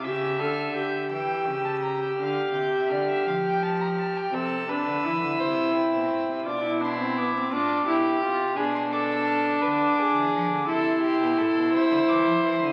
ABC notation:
X:1
M:12/8
L:1/16
Q:3/8=57
K:Aphr
V:1 name="Violin"
e'2 f'2 g'2 e'6 f'2 g'2 f'8 | e'12 d'2 c'2 d'2 d'6 | =b c' d' e' ^e' d'6- d' c'6 =e'2 d'2 c'2 |]
V:2 name="Violin"
e6 g3 a ^a g f3 e d e f g =a b a g | A2 =B4 c2 C4 D2 E4 F2 G4 | ^G2 A4 =B2 G4 A2 =G2 A2 c6 |]
V:3 name="Viola"
G2 A2 G16- G4 | C2 D2 E8 F E D C =B, C D2 E2 F2 | D12 E12 |]
V:4 name="Cello" clef=bass
^C,2 D,4 E,2 C,4 D,2 =C,2 D,2 F,6 | C,3 D, E, D, C,3 =B,, A,, C, B,,6 A,,2 B,,2 C,2 | =B,,6 D,3 E, ^E, D, C,3 B,, A,, B,, C, D, =E, F, E, D, |]